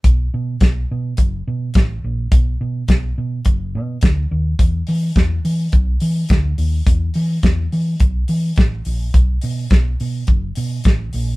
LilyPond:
<<
  \new Staff \with { instrumentName = "Fingered electric bass" } { \clef bass \time 4/4 \key e \dorian \tempo 4 = 106 b,,8 b,8 b,,8 b,8 fis,,8 b,8 a,,8 ais,,8 | b,,8 b,8 b,,8 b,8 fis,,8 b,8 d,8 dis,8 | e,8 e8 e,8 e8 b,,8 e8 d,8 dis,8 | e,8 e8 e,8 e8 b,,8 e8 a,,8 ais,,8 |
b,,8 b,8 b,,8 b,8 fis,,8 b,8 a,,8 ais,,8 | }
  \new DrumStaff \with { instrumentName = "Drums" } \drummode { \time 4/4 <hh bd>4 <hh bd sn>4 <hh bd>4 <hh bd sn>4 | <hh bd>4 <hh bd sn>4 <hh bd>4 <hh bd sn>4 | <hh bd>8 hho8 <hh bd sn>8 hho8 <hh bd>8 hho8 <hh bd sn>8 hho8 | <hh bd>8 hho8 <hh bd sn>8 hho8 <hh bd>8 hho8 <hh bd sn>8 hho8 |
<hh bd>8 hho8 <hh bd sn>8 hho8 <hh bd>8 hho8 <hh bd sn>8 hho8 | }
>>